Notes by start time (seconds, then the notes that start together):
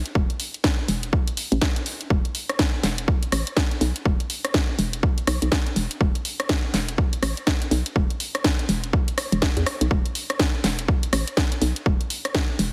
0.06 closed hi-hat
0.15 E1, kick
0.30 closed hi-hat
0.40 open hi-hat
0.54 closed hi-hat
0.64 kick, snare
0.88 E1, open hi-hat
1.03 closed hi-hat
1.13 kick
1.28 closed hi-hat
1.37 open hi-hat
1.52 A1, closed hi-hat
1.61 kick, snare
1.76 closed hi-hat
1.86 open hi-hat
2.01 closed hi-hat
2.10 E1, kick
2.25 closed hi-hat
2.35 open hi-hat
2.49 cross-stick, closed hi-hat
2.59 kick, snare
2.83 E1, snare, open hi-hat
2.98 closed hi-hat
3.08 kick
3.23 closed hi-hat
3.32 A1, cross-stick, open hi-hat
3.47 closed hi-hat
3.57 kick, snare
3.71 closed hi-hat
3.81 B1, open hi-hat
3.96 closed hi-hat
4.05 E1, kick
4.20 closed hi-hat
4.30 open hi-hat
4.45 cross-stick, closed hi-hat
4.54 kick, snare
4.79 E1, open hi-hat
4.93 closed hi-hat
5.03 kick
5.18 closed hi-hat
5.27 B1, cross-stick, open hi-hat
5.42 B1, closed hi-hat
5.52 kick, snare
5.67 closed hi-hat
5.76 E1, open hi-hat
5.91 closed hi-hat
6.01 E1, kick
6.15 closed hi-hat
6.25 open hi-hat
6.40 cross-stick, closed hi-hat
6.49 kick, snare
6.74 E1, snare, open hi-hat
6.88 closed hi-hat
6.98 kick
7.13 closed hi-hat
7.22 A1, cross-stick, open hi-hat
7.37 closed hi-hat
7.47 kick, snare
7.62 closed hi-hat
7.71 B1, open hi-hat
7.86 closed hi-hat
7.96 E1, kick
8.10 closed hi-hat
8.20 open hi-hat
8.35 cross-stick, closed hi-hat
8.44 kick, snare
8.59 closed hi-hat
8.69 E1, open hi-hat
8.84 closed hi-hat
8.93 kick
9.08 closed hi-hat
9.18 cross-stick, open hi-hat
9.32 E1, closed hi-hat
9.42 kick, snare
9.57 E2, closed hi-hat
9.66 cross-stick, open hi-hat
9.81 B1, closed hi-hat
9.91 E1, kick
10.06 closed hi-hat
10.15 open hi-hat
10.30 cross-stick, closed hi-hat
10.39 kick, snare
10.64 E1, snare, open hi-hat
10.79 closed hi-hat
10.88 kick
11.03 closed hi-hat
11.13 A1, cross-stick, open hi-hat
11.27 closed hi-hat
11.37 kick, snare
11.52 closed hi-hat
11.62 B1, open hi-hat
11.76 closed hi-hat
11.86 E1, kick
12.01 closed hi-hat
12.10 open hi-hat
12.25 cross-stick, closed hi-hat
12.35 kick, snare
12.59 E1, open hi-hat